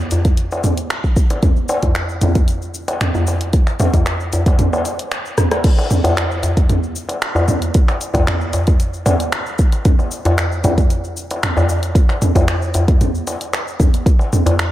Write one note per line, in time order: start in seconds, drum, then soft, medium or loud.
0.11 closed hi-hat soft
0.11 darbuka dum medium
0.11 cabasa medium
0.25 kick medium
0.25 closed hi-hat soft
0.25 cabasa soft
0.37 closed hi-hat soft
0.37 cabasa soft
0.51 darbuka tek medium
0.51 cabasa soft
0.64 closed hi-hat soft
0.64 mid tom medium
0.64 cabasa medium
0.77 closed hi-hat soft
0.77 cabasa soft
0.90 finger snap loud
0.90 closed hi-hat medium
0.90 cabasa soft
1.04 kick medium
1.04 cabasa soft
1.16 kick loud
1.16 cabasa medium
1.30 closed hi-hat soft
1.30 darbuka ka soft
1.30 darbuka tek medium
1.30 cabasa soft
1.43 kick loud
1.43 closed hi-hat medium
1.43 mid tom medium
1.43 cabasa soft
1.56 cabasa soft
1.69 darbuka ka medium
1.69 darbuka tek medium
1.69 cabasa medium
1.83 kick medium
1.83 closed hi-hat soft
1.83 darbuka dum medium
1.83 cabasa soft
1.95 finger snap loud
1.95 closed hi-hat medium
1.95 cabasa soft
2.09 cabasa soft
2.21 closed hi-hat medium
2.21 mid tom medium
2.21 darbuka dum medium
2.21 cabasa medium
2.35 kick medium
2.35 closed hi-hat soft
2.35 cabasa soft
2.48 closed hi-hat soft
2.48 cabasa soft
2.62 cabasa soft
2.74 cabasa medium
2.88 closed hi-hat soft
2.88 darbuka ka soft
2.88 darbuka tek medium
2.88 cabasa soft
3.01 finger snap loud
3.01 closed hi-hat medium
3.01 mid tom medium
3.01 cabasa soft
3.15 darbuka dum medium
3.15 cabasa soft
3.27 darbuka ka medium
3.27 cabasa medium
3.41 closed hi-hat soft
3.41 cabasa soft
3.53 kick loud
3.53 closed hi-hat medium
3.53 cabasa soft
3.67 finger snap soft
3.67 cabasa soft
3.80 closed hi-hat soft
3.80 mid tom medium
3.80 darbuka ka medium
3.80 darbuka tek medium
3.80 cabasa medium
3.94 kick medium
3.94 closed hi-hat soft
3.94 darbuka dum medium
3.94 cabasa soft
4.06 finger snap loud
4.06 closed hi-hat medium
4.06 cabasa soft
4.20 cabasa soft
4.33 closed hi-hat medium
4.33 darbuka dum medium
4.33 cabasa medium
4.46 kick loud
4.46 closed hi-hat soft
4.46 darbuka tek medium
4.46 cabasa soft
4.59 closed hi-hat medium
4.59 mid tom medium
4.59 cabasa soft
4.73 darbuka tek medium
4.73 cabasa soft
4.85 closed hi-hat soft
4.85 cabasa medium
4.99 closed hi-hat soft
4.99 cabasa soft
5.12 finger snap loud
5.12 closed hi-hat medium
5.12 cabasa soft
5.25 cabasa soft
5.38 cross-stick medium
5.38 closed hi-hat soft
5.38 mid tom medium
5.38 cabasa medium
5.51 cross-stick medium
5.51 closed hi-hat soft
5.51 darbuka ka medium
5.51 darbuka tek medium
5.51 cabasa soft
5.64 kick loud
5.64 closed hi-hat medium
5.64 crash loud
5.64 cabasa soft
5.78 darbuka ka medium
5.78 cabasa soft
5.91 mid tom medium
5.91 cabasa medium
6.04 closed hi-hat soft
6.04 darbuka tek medium
6.04 darbuka dum medium
6.04 cabasa soft
6.17 finger snap loud
6.17 closed hi-hat medium
6.17 cabasa soft
6.31 cabasa soft
6.43 closed hi-hat soft
6.43 darbuka ka soft
6.43 darbuka dum medium
6.43 cabasa medium
6.57 kick medium
6.57 closed hi-hat soft
6.57 cabasa soft
6.69 closed hi-hat medium
6.69 mid tom medium
6.69 cabasa soft
6.83 cabasa soft
6.96 cabasa medium
7.09 closed hi-hat soft
7.09 darbuka ka medium
7.09 cabasa soft
7.22 finger snap loud
7.22 closed hi-hat medium
7.22 cabasa soft
7.35 darbuka tek medium
7.35 darbuka dum medium
7.35 cabasa soft
7.48 mid tom medium
7.48 cabasa medium
7.62 closed hi-hat soft
7.62 cabasa soft
7.74 kick loud
7.74 closed hi-hat medium
7.74 cabasa soft
7.88 finger snap soft
7.88 darbuka ka medium
7.88 cabasa soft
8.01 closed hi-hat soft
8.01 cabasa medium
8.14 kick medium
8.14 closed hi-hat soft
8.14 darbuka tek medium
8.14 darbuka dum medium
8.14 cabasa soft
8.27 finger snap loud
8.27 closed hi-hat medium
8.27 mid tom medium
8.27 cabasa soft
8.41 cabasa soft
8.53 closed hi-hat medium
8.53 darbuka ka medium
8.53 darbuka dum medium
8.53 cabasa medium
8.67 kick loud
8.67 closed hi-hat soft
8.67 cabasa soft
8.80 closed hi-hat medium
8.80 cabasa soft
8.94 cabasa soft
9.06 closed hi-hat soft
9.06 mid tom medium
9.06 darbuka tek medium
9.06 cabasa medium
9.20 closed hi-hat soft
9.20 cabasa soft
9.32 finger snap loud
9.32 closed hi-hat medium
9.32 cabasa soft
9.46 cabasa soft
9.59 kick loud
9.59 cabasa medium
9.72 closed hi-hat soft
9.72 darbuka tek soft
9.72 cabasa soft
9.85 kick loud
9.85 closed hi-hat medium
9.85 mid tom medium
9.85 cabasa soft
9.99 darbuka ka medium
9.99 cabasa soft
10.11 cabasa medium
10.25 closed hi-hat soft
10.25 darbuka tek medium
10.25 darbuka dum medium
10.25 cabasa soft
10.38 finger snap loud
10.38 closed hi-hat medium
10.38 cabasa medium
10.52 cabasa soft
10.64 closed hi-hat soft
10.64 mid tom medium
10.64 darbuka ka medium
10.64 darbuka dum medium
10.64 cabasa medium
10.78 kick loud
10.78 closed hi-hat soft
10.78 cabasa soft
10.90 closed hi-hat soft
10.90 cabasa soft
11.04 cabasa soft
11.17 cabasa medium
11.31 closed hi-hat soft
11.31 darbuka ka medium
11.31 cabasa soft
11.43 finger snap loud
11.43 closed hi-hat medium
11.43 mid tom medium
11.43 cabasa soft
11.57 darbuka tek medium
11.57 darbuka dum medium
11.57 cabasa soft
11.69 cabasa medium
11.83 closed hi-hat soft
11.83 cabasa soft
11.95 kick loud
11.95 closed hi-hat medium
11.95 cabasa soft
12.09 finger snap soft
12.09 darbuka ka medium
12.09 cabasa soft
12.22 closed hi-hat soft
12.22 mid tom medium
12.22 cabasa medium
12.35 kick medium
12.35 closed hi-hat soft
12.35 darbuka tek medium
12.35 darbuka dum loud
12.35 cabasa soft
12.48 finger snap loud
12.48 closed hi-hat medium
12.48 cabasa soft
12.62 cabasa soft
12.74 closed hi-hat soft
12.74 darbuka ka soft
12.74 darbuka dum medium
12.74 cabasa medium
12.88 kick loud
12.88 closed hi-hat soft
12.88 cabasa soft
13.01 closed hi-hat soft
13.01 mid tom medium
13.01 cabasa soft
13.15 cabasa soft
13.27 closed hi-hat soft
13.27 darbuka tek medium
13.27 cabasa medium
13.41 closed hi-hat soft
13.41 cabasa soft
13.53 finger snap loud
13.53 closed hi-hat medium
13.53 cabasa soft
13.68 cabasa soft
13.80 kick loud
13.80 mid tom medium
13.80 cabasa medium
13.94 closed hi-hat soft
13.94 darbuka tek soft
13.94 cabasa soft
14.06 kick loud
14.06 closed hi-hat medium
14.06 cabasa soft
14.19 darbuka ka medium
14.19 cabasa soft
14.33 mid tom medium
14.33 cabasa medium
14.46 closed hi-hat soft
14.46 darbuka tek medium
14.46 darbuka dum medium
14.46 cabasa soft
14.59 finger snap loud
14.59 closed hi-hat medium
14.59 cabasa soft